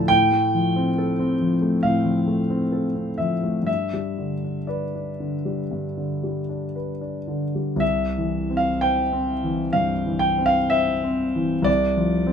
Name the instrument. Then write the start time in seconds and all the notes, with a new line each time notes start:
grand piano
Already playing: D2 A2 F3 D4 A4 A5 B5
0.08 A2 G5
0.32 A3
0.55 F3
0.76 C4
0.98 A4
1.19 C4
1.41 F3
1.62 A3
1.83 A2 F5
2.06 F3
2.28 A3
2.50 C4
2.72 A4
2.95 C4
3.18 F3 E5
3.43 A3
3.63 G2 E5
3.93 G3
4.18 D3
4.44 D4
4.67 B4 D5
4.95 D4
5.20 D3
5.45 G3
5.71 G2
5.97 D3
6.23 G3
6.49 D4
6.76 B4
7.01 D4
7.28 D3
7.55 G3
7.76 C2 E5
8.17 E3
8.50 C4
8.57 F5
8.81 C5 G5
9.13 C4
9.43 E3
9.73 G2 F5
10.05 E3
10.19 G5
10.38 C4
10.46 F5
10.70 C5 E5
11.04 C4
11.35 E3
11.62 C2 D5
11.97 F3
12.27 C4